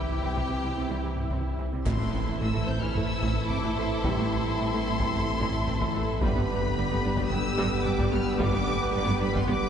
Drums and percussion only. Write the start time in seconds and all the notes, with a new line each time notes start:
0.22 taiko
1.17 taiko low-mid
1.31 taiko
1.86 taiko
2.81 taiko
2.95 taiko low-mid
3.23 taiko
3.50 taiko low-mid
3.63 taiko
4.04 taiko
5.00 taiko
5.13 taiko low-mid
5.40 taiko
5.67 taiko low-mid
5.81 taiko
6.21 taiko
7.17 taiko
7.30 taiko low-mid
7.58 taiko
7.85 taiko low-mid
7.99 taiko
8.40 taiko
9.36 taiko
9.49 taiko low-mid